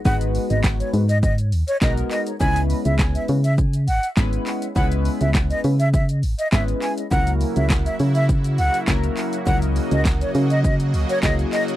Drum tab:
HH |-xox-xox-xox-xox|-xox-xox-xox-xox|-xox-xox-xox-xox|-xox-xox-xox-xox|
SH |xxxxxxxxxxxxxxxx|xxxxxxxxxxxxxxxx|xxxxxxxxxxxxxxxx|xxxxxxxxxxxxxxxx|
CP |----x-------x-x-|----x-------x-x-|----x-------x-x-|----x-------x-x-|
SD |----o-------o---|----o-------o---|----o-------o---|----o-------o---|
BD |o---o---o---o---|o---o---o---o---|o---o---o---o---|o---o---o---o---|

HH |-xox-xox-xox-xox|
SH |xxxxxxxxxxxxxxxx|
CP |----x-------x-x-|
SD |----o-------o---|
BD |o---o---o---o---|